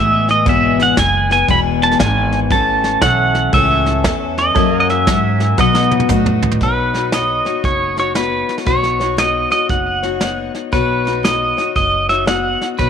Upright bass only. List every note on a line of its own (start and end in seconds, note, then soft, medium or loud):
0.00 0.45 A1 loud
0.46 0.95 G#1 medium
0.97 1.47 F#1 loud
1.49 1.98 E1 medium
1.99 2.49 G#1 loud
2.50 3.00 A1 medium
3.02 3.52 B1 medium
3.53 4.03 C#2 loud
4.04 4.54 E2 loud
4.56 5.05 F#2 medium
5.07 5.57 G#2 medium
5.58 6.08 B2 medium
6.10 6.59 A2 loud
6.61 7.38 B1 medium
7.64 8.41 F#1 medium
8.66 9.44 B1 medium
9.70 10.47 F#1 medium
10.73 11.50 B1 medium
11.76 12.53 F#1 medium
12.79 12.90 B1 medium